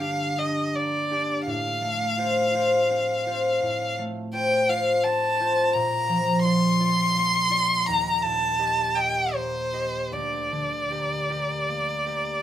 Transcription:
Already playing: G2 D3 A#3
0.00 D4 G4 F5
0.37 D4 G4 D#5
0.74 A#3 D5
1.10 D4 G4
1.47 A2 F5
1.81 A3
2.18 F4 C5
2.54 F4 C5
2.90 C4
3.26 F4 C5
3.63 A2
3.99 A3
4.33 F4 C5 G5
4.69 F4 C5 F5
5.03 C4 A5
5.40 F4 C5
5.73 A#2 A#5
6.09 F3
6.44 F4 D5 C6
6.80 F4 D5
7.16 A#3
7.50 F4 D5
7.86 D#2 A#5
8.22 A#2 A5
8.59 G4 D#5
8.95 G4 D#5 G5
9.34 A#3 C5
9.73 G4 D#5
10.12 D2 D5
10.52 D3
10.91 G4 A#4
11.29 G4 A#4
11.69 A#3
12.06 G4 A#4

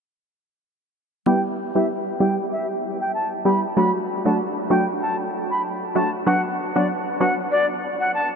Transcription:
1.26 G3 B3 E4 G4 G5
1.75 G3 B3 E4 G4 E5
2.20 G3 B3 E4 G4 G5
2.52 E5
3.01 G5
3.14 A5
3.45 G3 B3 E4 G4 B5
3.77 F#3 A3 D4 F#4 B5
4.25 F#3 A3 D4 F#4 A5
4.70 F#3 A3 D4 F#4 G5
5.02 A5
5.51 B5
5.95 F#3 A3 D4 F#4 A5
6.26 F#3 B3 D4 F#4 F#5
6.76 F#3 B3 D4 F#4 D5
7.20 F#3 B3 D4 F#4 F#5
7.52 D5
8.00 F#5
8.14 A5

